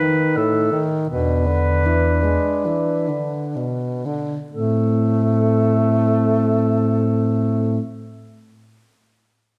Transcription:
Already playing: alto saxophone D#4, clarinet B4
0.01 tenor saxophone D#3
0.37 tenor saxophone A2, clarinet A4
0.71 tenor saxophone D#3
1.09 bass clarinet E2, tenor saxophone B2, alto saxophone D4, clarinet B4
1.47 tenor saxophone D3
1.86 tenor saxophone E3
2.23 tenor saxophone G#3
2.66 tenor saxophone E3
3.09 tenor saxophone D3
3.56 tenor saxophone B2
4.05 tenor saxophone D3
4.50 bass clarinet A2, tenor saxophone A3, alto saxophone C4, clarinet A4

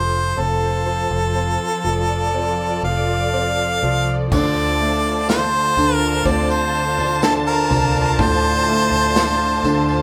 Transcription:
Already playing: fingered electric bass F1, grand piano F3, string section F3 F4 A4 C5, harmonica C5
0.37 fingered electric bass F1, grand piano C4, harmonica A4
0.86 grand piano F3
1.11 fingered electric bass F1
1.35 grand piano C4
1.84 fingered electric bass F1, grand piano F3, string section D5
2.34 grand piano C4
2.83 fingered electric bass F1, grand piano F3, harmonica F5
3.34 grand piano C4
3.83 fingered electric bass C2, grand piano F3
4.31 fingered electric bass D2, string section D3 D4 F4 C5, grand piano D3, harmonica D5, violin section A5, kick, floor tom, crash, tambourine
4.80 grand piano A3
5.28 grand piano F4, harmonica C5, snare, tambourine
5.77 fingered electric bass D2, grand piano D3, tambourine
5.94 harmonica A#4
6.25 fingered electric bass D2, grand piano C4, harmonica D5, kick, floor tom, tambourine
6.50 harmonica C5, tambourine
6.75 tambourine
6.98 floor tom, tambourine
7.22 grand piano D3, harmonica A4, snare, tambourine
7.47 harmonica A#4
7.71 fingered electric bass C2, floor tom, tambourine
7.95 floor tom, tambourine
8.19 fingered electric bass D2, grand piano A2, harmonica C5, kick, floor tom, tambourine
8.68 grand piano A3
8.92 fingered electric bass D2
9.16 grand piano F4, snare, tambourine
9.63 fingered electric bass D2, grand piano D3, floor tom, tambourine
9.88 tambourine

